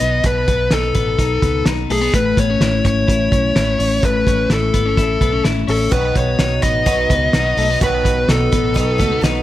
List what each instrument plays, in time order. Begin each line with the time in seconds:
Already playing: clean electric guitar B2 D#4, lead electric guitar D#5
0.00 fingered electric bass B1, clean electric guitar B3, closed hi-hat
0.24 fingered electric bass B1, clean electric guitar B2, lead electric guitar B4, kick, closed hi-hat
0.48 fingered electric bass B1, clean electric guitar B3, kick, closed hi-hat
0.71 fingered electric bass B1, clean electric guitar D#4, lead electric guitar A4, snare, closed hi-hat
0.95 fingered electric bass A1, clean electric guitar B3, kick, closed hi-hat
1.18 fingered electric bass B1, clean electric guitar D#4, kick, closed hi-hat
1.42 fingered electric bass C#2, clean electric guitar B3, kick, closed hi-hat
1.66 fingered electric bass B1, clean electric guitar D#4, snare, closed hi-hat
1.90 fingered electric bass B1, clean electric guitar A3, lead electric guitar G#4, open hi-hat
2.01 clean electric guitar B3
2.13 fingered electric bass A1, clean electric guitar A2, lead electric guitar B4, kick, closed hi-hat
2.37 fingered electric bass A1, clean electric guitar B3, lead electric guitar C#5, kick, closed hi-hat
2.50 clean electric guitar C#4
2.60 fingered electric bass A1, clean electric guitar E4, snare, closed hi-hat
2.85 fingered electric bass G#1, clean electric guitar C#4, lead electric guitar C#5, kick, closed hi-hat
3.07 fingered electric bass A1, clean electric guitar E4, kick, closed hi-hat
3.32 fingered electric bass B1, clean electric guitar C#4, kick, closed hi-hat
3.55 fingered electric bass A1, clean electric guitar E4, snare, closed hi-hat
3.79 fingered electric bass A1, clean electric guitar C#4, open hi-hat
4.03 fingered electric bass A1, clean electric guitar A2, lead electric guitar B4, kick, closed hi-hat
4.26 fingered electric bass A1, clean electric guitar C#4, kick, closed hi-hat
4.50 fingered electric bass A1, clean electric guitar E4, lead electric guitar A4, snare, closed hi-hat
4.74 fingered electric bass G#1, clean electric guitar B3, kick, closed hi-hat
4.86 clean electric guitar C#4
4.97 fingered electric bass A1, clean electric guitar E4, kick, closed hi-hat
5.21 fingered electric bass B1, clean electric guitar B3, kick, closed hi-hat
5.32 clean electric guitar C#4
5.44 fingered electric bass A1, clean electric guitar E4, snare, closed hi-hat
5.68 fingered electric bass A1, clean electric guitar C#4, lead electric guitar A4, open hi-hat
5.91 fingered electric bass B1, twelve-string acoustic guitar B2 D#3 F#3 B3 D#4 B4, clean electric guitar B2, lead electric guitar B4, kick, closed hi-hat
6.15 fingered electric bass B1, clean electric guitar B3, lead electric guitar C#5, kick, closed hi-hat
6.39 fingered electric bass B1, clean electric guitar D#4, snare, closed hi-hat
6.62 fingered electric bass A1, twelve-string acoustic guitar F#3 B3 D#4 B4, clean electric guitar B3, lead electric guitar D#5, kick, closed hi-hat
6.86 fingered electric bass B1, twelve-string acoustic guitar B2 D#3 F#3 B3 D#4 B4, clean electric guitar D#4, kick, closed hi-hat
7.10 fingered electric bass C#2, twelve-string acoustic guitar F#3 B3 D#4 B4, clean electric guitar B3, kick, closed hi-hat
7.33 fingered electric bass B1, twelve-string acoustic guitar F#3 B3 D#4, clean electric guitar D#4, snare, closed hi-hat
7.37 twelve-string acoustic guitar B4
7.57 fingered electric bass B1, twelve-string acoustic guitar F#3 B3 D#4 B4, clean electric guitar A3, open hi-hat
7.70 clean electric guitar B3
7.81 fingered electric bass B1, clean electric guitar B2, twelve-string acoustic guitar B2 D#3 F#3 B3 D#4 B4, lead electric guitar B4, kick, closed hi-hat
8.05 fingered electric bass B1, clean electric guitar B3, kick, closed hi-hat
8.28 fingered electric bass B1, clean electric guitar D#4, lead electric guitar A4, snare, closed hi-hat
8.52 fingered electric bass A1, twelve-string acoustic guitar F#3 B3 D#4 B4, clean electric guitar B3, kick, closed hi-hat
8.74 fingered electric bass B1, twelve-string acoustic guitar B2 D#3 F#3 B3 D#4 B4, clean electric guitar D#4, kick, closed hi-hat
8.98 fingered electric bass C#2, twelve-string acoustic guitar F#3 B3 D#4 B4, clean electric guitar A3, kick, closed hi-hat
9.12 clean electric guitar B3
9.21 fingered electric bass B1, twelve-string acoustic guitar F#3 B3 D#4 B4, clean electric guitar D#4, snare, closed hi-hat